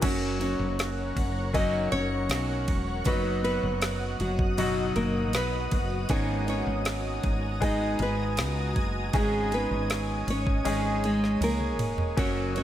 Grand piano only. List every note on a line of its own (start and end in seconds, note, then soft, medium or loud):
0.02 1.47 F#3 medium
0.02 1.47 A#3 medium
0.02 1.46 C#4 medium
0.02 1.47 F#4 medium
1.53 2.98 F#3 medium
1.53 2.99 A#3 medium
1.53 2.99 C#4 medium
1.53 2.99 D#4 medium
3.06 4.51 F#3 medium
3.06 4.51 B3 medium
3.06 4.51 D#4 medium
3.06 4.51 F#4 medium
4.58 6.02 B2 medium
4.58 6.02 F#3 medium
4.58 6.02 D#4 medium
4.58 6.03 F#4 medium
6.09 7.20 G#2 medium
6.09 7.54 A#3 medium
6.09 7.54 B3 medium
6.09 7.54 D#4 medium
6.09 7.54 G#4 medium
7.61 9.06 G#3 medium
7.61 9.06 B3 medium
7.61 9.06 D#4 medium
7.61 9.06 G#4 medium
9.13 10.24 G#2 medium
9.13 10.58 G#3 medium
9.13 10.58 C#4 medium
9.13 10.58 D#4 medium
9.13 10.58 G#4 medium
10.65 12.09 G#3 medium
10.65 12.10 C#4 medium
10.65 12.10 D#4 medium
10.65 12.10 G#4 medium
12.17 12.63 F#3 medium
12.17 12.63 A#3 medium
12.17 12.63 C#4 medium
12.17 12.63 F#4 medium